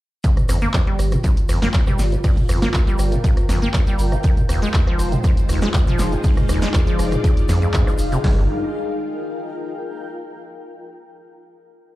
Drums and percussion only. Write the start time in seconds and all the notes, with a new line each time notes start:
0.24 kick, closed hi-hat, shaker
0.37 cross-stick, closed hi-hat, mid tom, shaker
0.48 cross-stick, closed hi-hat, open hi-hat, shaker
0.61 snare, closed hi-hat, shaker
0.74 kick, cross-stick, snare, clap, closed hi-hat, shaker
0.87 closed hi-hat
0.99 cross-stick, closed hi-hat, open hi-hat, shaker
1.12 cross-stick, closed hi-hat, mid tom, shaker
1.23 kick, closed hi-hat, shaker
1.37 closed hi-hat, shaker
1.49 cross-stick, closed hi-hat, open hi-hat, shaker
1.62 snare, closed hi-hat, shaker
1.73 kick, snare, clap, closed hi-hat, shaker
1.87 cross-stick, snare, mid tom, shaker
1.99 snare, closed hi-hat, open hi-hat, shaker
2.12 closed hi-hat, shaker
2.24 kick, cross-stick, closed hi-hat, open hi-hat, shaker
2.37 closed hi-hat, mid tom, shaker
2.49 cross-stick, closed hi-hat, open hi-hat, shaker
2.62 cross-stick, snare, closed hi-hat, shaker
2.74 kick, snare, clap, closed hi-hat, shaker
2.87 closed hi-hat, shaker
2.99 cross-stick, closed hi-hat, open hi-hat, shaker
3.12 closed hi-hat, mid tom, shaker
3.24 kick, closed hi-hat, shaker
3.37 cross-stick, closed hi-hat, shaker
3.49 cross-stick, snare, closed hi-hat, open hi-hat, shaker
3.62 closed hi-hat, shaker
3.74 kick, cross-stick, snare, clap, closed hi-hat, shaker
3.87 closed hi-hat, shaker
3.99 closed hi-hat, open hi-hat, shaker
4.12 cross-stick, closed hi-hat, shaker
4.23 kick, closed hi-hat, shaker
4.37 closed hi-hat, mid tom, shaker
4.49 cross-stick, closed hi-hat, open hi-hat, shaker
4.62 snare, closed hi-hat, shaker
4.74 kick, snare, clap, closed hi-hat, shaker
4.87 cross-stick, closed hi-hat
4.99 cross-stick, closed hi-hat, open hi-hat, shaker
5.12 closed hi-hat, mid tom, shaker
5.24 kick, cross-stick, closed hi-hat, shaker
5.37 closed hi-hat, shaker
5.49 cross-stick, closed hi-hat, open hi-hat, shaker
5.62 cross-stick, snare, closed hi-hat, shaker
5.74 kick, snare, clap, closed hi-hat, shaker
5.87 snare, mid tom, shaker
5.98 cross-stick, snare, closed hi-hat, open hi-hat, shaker
6.12 closed hi-hat, shaker
6.24 kick, closed hi-hat, open hi-hat, shaker
6.37 cross-stick, closed hi-hat, mid tom, shaker
6.49 cross-stick, closed hi-hat, open hi-hat, shaker
6.62 snare, closed hi-hat, shaker
6.74 kick, cross-stick, snare, clap, closed hi-hat, shaker
6.87 closed hi-hat, shaker
6.99 cross-stick, closed hi-hat, open hi-hat, shaker
7.12 cross-stick, closed hi-hat, mid tom, shaker
7.24 kick, closed hi-hat, shaker
7.37 closed hi-hat, shaker
7.49 cross-stick, snare, closed hi-hat, open hi-hat, shaker
7.62 closed hi-hat, shaker
7.74 kick, clap, closed hi-hat, shaker
7.87 cross-stick, closed hi-hat, shaker
7.98 open hi-hat, shaker
8.12 closed hi-hat, shaker
8.24 kick, snare, open hi-hat